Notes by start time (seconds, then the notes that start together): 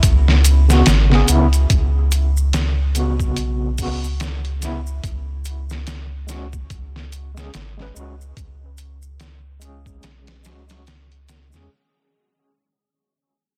0.03 C#2, kick, closed hi-hat, maracas
0.28 snare
0.44 closed hi-hat, maracas
0.69 C#3 B3, snare, maracas
0.73 F#4
0.86 G#1, snare, closed hi-hat, maracas
1.10 C#3 B3, snare
1.15 G#4
1.27 C#2 C#3 B3, closed hi-hat, maracas
1.32 E4
1.53 closed hi-hat, maracas
1.70 C#2, kick, closed hi-hat, maracas
2.12 closed hi-hat, maracas
2.37 maracas
2.53 snare, closed hi-hat, maracas
2.94 C#3 B3, closed hi-hat, maracas
2.99 F#4
3.20 kick, maracas
3.36 B1, closed hi-hat, maracas
3.78 C#2 C#3 B3, kick, open hi-hat, maracas
3.83 F#4
4.04 maracas
4.20 snare, closed hi-hat, maracas
4.45 closed hi-hat
4.60 C#3 B3, snare, closed hi-hat, maracas
4.65 E4
4.87 maracas
5.04 C#2, kick, closed hi-hat, maracas
5.45 closed hi-hat, maracas
5.70 snare, maracas
5.87 snare, closed hi-hat, maracas
6.27 G#3 C#4, snare, closed hi-hat, maracas
6.31 F#4
6.53 kick, maracas
6.70 C#2, kick, closed hi-hat, maracas
6.96 snare
7.12 closed hi-hat, maracas
7.35 G#3 C#4, snare, maracas
7.40 G#4
7.54 G#1, snare, closed hi-hat, maracas
7.78 G#3 C#4, snare
7.82 B4
7.95 C#2 G#3 C#4, maracas
7.99 F#4
8.21 maracas
8.37 C#2, kick, closed hi-hat, maracas
8.78 closed hi-hat, maracas
9.02 maracas
9.20 snare, closed hi-hat, maracas
9.60 G#3 C#4, closed hi-hat, maracas
9.65 G#4
9.86 kick, maracas
10.03 B1, snare, closed hi-hat, maracas
10.27 snare, closed hi-hat
10.43 C#2 G#3 C#4, snare, closed hi-hat, maracas
10.48 F#4
10.67 G#3 C#4, snare, closed hi-hat, maracas
10.72 F#4
10.87 snare, closed hi-hat, maracas
11.12 closed hi-hat
11.28 snare, closed hi-hat, maracas
11.50 E2 G#3 C#4, snare, maracas
11.56 G#4